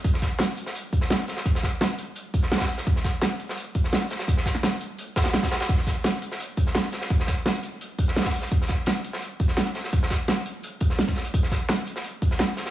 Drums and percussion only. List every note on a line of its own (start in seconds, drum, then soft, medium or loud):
0.04 kick loud
0.04 closed hi-hat medium
0.14 snare soft
0.22 kick medium
0.22 snare soft
0.22 closed hi-hat medium
0.22 shaker medium
0.31 shaker soft
0.39 snare loud
0.39 closed hi-hat medium
0.57 closed hi-hat medium
0.57 shaker medium
0.66 snare medium
0.75 closed hi-hat medium
0.93 kick loud
0.93 closed hi-hat medium
0.93 shaker medium
1.01 snare soft
1.10 snare loud
1.10 closed hi-hat medium
1.19 snare soft
1.28 snare medium
1.28 closed hi-hat medium
1.28 shaker medium
1.37 snare medium
1.46 kick loud
1.46 closed hi-hat medium
1.55 snare medium
1.63 kick medium
1.63 snare medium
1.63 closed hi-hat medium
1.63 shaker medium
1.72 shaker soft
1.81 snare loud
1.81 closed hi-hat medium
1.99 closed hi-hat medium
1.99 shaker medium
2.16 closed hi-hat medium
2.34 kick loud
2.34 closed hi-hat medium
2.34 shaker medium
2.43 snare soft
2.52 snare loud
2.52 snare medium
2.52 closed hi-hat medium
2.56 snare medium
2.56 closed hi-hat medium
2.60 kick medium
2.60 snare loud
2.60 closed hi-hat medium
2.69 closed hi-hat medium
2.69 open hi-hat medium
2.69 shaker medium
2.78 snare soft
2.87 kick loud
2.87 closed hi-hat medium
2.96 snare soft
3.04 kick medium
3.04 snare soft
3.04 closed hi-hat medium
3.04 closed hi-hat loud
3.04 shaker medium
3.13 shaker soft
3.21 snare loud
3.21 closed hi-hat medium
3.40 closed hi-hat loud
3.40 closed hi-hat medium
3.40 shaker medium
3.49 snare medium
3.57 closed hi-hat medium
3.75 kick loud
3.75 closed hi-hat loud
3.75 closed hi-hat medium
3.75 shaker medium
3.84 snare soft
3.92 snare loud
3.92 closed hi-hat medium
4.02 snare soft
4.10 snare medium
4.10 closed hi-hat loud
4.10 closed hi-hat medium
4.10 shaker medium
4.19 snare medium
4.28 kick loud
4.28 closed hi-hat medium
4.37 snare soft
4.46 kick medium
4.46 snare medium
4.46 closed hi-hat loud
4.46 closed hi-hat medium
4.46 shaker medium
4.55 snare medium
4.55 shaker soft
4.63 snare loud
4.63 closed hi-hat medium
4.81 closed hi-hat loud
4.81 closed hi-hat medium
4.81 shaker medium
4.90 shaker soft
4.98 closed hi-hat medium
5.16 kick loud
5.16 snare loud
5.16 closed hi-hat loud
5.16 closed hi-hat medium
5.16 shaker medium
5.24 snare loud
5.24 snare soft
5.24 closed hi-hat medium
5.33 snare loud
5.33 closed hi-hat medium
5.43 kick medium
5.43 snare loud
5.43 closed hi-hat medium
5.51 snare loud
5.51 closed hi-hat medium
5.51 closed hi-hat loud
5.51 shaker medium
5.60 snare loud
5.60 closed hi-hat medium
5.69 kick loud
5.69 closed hi-hat medium
5.69 crash medium
5.78 snare soft
5.87 kick medium
5.87 snare soft
5.87 closed hi-hat medium
5.87 shaker medium
5.96 shaker soft
6.04 snare loud
6.04 closed hi-hat medium
6.04 closed hi-hat loud
6.22 closed hi-hat medium
6.22 shaker medium
6.31 snare medium
6.40 closed hi-hat medium
6.57 kick loud
6.57 closed hi-hat medium
6.57 closed hi-hat loud
6.57 shaker medium
6.67 snare soft
6.75 snare loud
6.75 closed hi-hat medium
6.84 snare soft
6.92 snare medium
6.92 closed hi-hat medium
6.92 closed hi-hat loud
6.92 shaker medium
7.01 snare medium
7.10 kick loud
7.10 closed hi-hat medium
7.20 snare soft
7.27 kick medium
7.27 snare medium
7.27 closed hi-hat medium
7.27 shaker medium
7.37 shaker soft
7.46 snare loud
7.46 closed hi-hat medium
7.63 closed hi-hat medium
7.63 closed hi-hat loud
7.63 shaker medium
7.81 closed hi-hat medium
7.99 kick loud
7.99 closed hi-hat medium
7.99 closed hi-hat loud
7.99 shaker medium
8.08 snare soft
8.16 snare loud
8.16 snare medium
8.16 closed hi-hat medium
8.20 snare medium
8.20 closed hi-hat medium
8.25 kick medium
8.25 snare loud
8.25 closed hi-hat medium
8.34 closed hi-hat loud
8.34 open hi-hat medium
8.34 shaker medium
8.42 snare soft
8.52 kick loud
8.52 closed hi-hat medium
8.62 snare soft
8.68 kick medium
8.68 snare soft
8.68 closed hi-hat medium
8.68 shaker medium
8.78 shaker soft
8.86 snare loud
8.86 closed hi-hat loud
8.86 closed hi-hat medium
9.04 closed hi-hat medium
9.04 shaker medium
9.13 snare medium
9.22 closed hi-hat medium
9.40 kick loud
9.40 closed hi-hat medium
9.40 shaker medium
9.48 snare soft
9.57 snare loud
9.57 closed hi-hat medium
9.66 snare soft
9.75 snare medium
9.75 closed hi-hat medium
9.75 shaker medium
9.84 snare soft
9.93 kick loud
9.93 closed hi-hat medium
10.03 snare medium
10.10 kick medium
10.10 snare medium
10.10 closed hi-hat medium
10.10 shaker medium
10.20 shaker soft
10.28 snare loud
10.28 closed hi-hat loud
10.28 closed hi-hat medium
10.46 closed hi-hat medium
10.46 shaker medium
10.64 closed hi-hat medium
10.80 kick loud
10.80 closed hi-hat medium
10.80 shaker medium
10.90 snare soft
10.99 snare loud
10.99 closed hi-hat medium
11.07 kick medium
11.07 snare soft
11.15 snare soft
11.15 closed hi-hat medium
11.15 shaker medium
11.25 closed hi-hat medium
11.34 kick loud
11.34 closed hi-hat medium
11.43 snare soft
11.51 kick medium
11.51 snare soft
11.51 closed hi-hat medium
11.51 shaker medium
11.61 shaker soft
11.69 snare loud
11.69 closed hi-hat medium
11.87 closed hi-hat medium
11.87 shaker medium
11.96 snare medium
12.04 closed hi-hat medium
12.22 kick loud
12.22 closed hi-hat medium
12.22 shaker medium
12.31 snare soft
12.39 snare loud
12.39 closed hi-hat medium
12.49 snare soft
12.57 snare medium
12.57 closed hi-hat medium
12.57 shaker medium
12.66 snare medium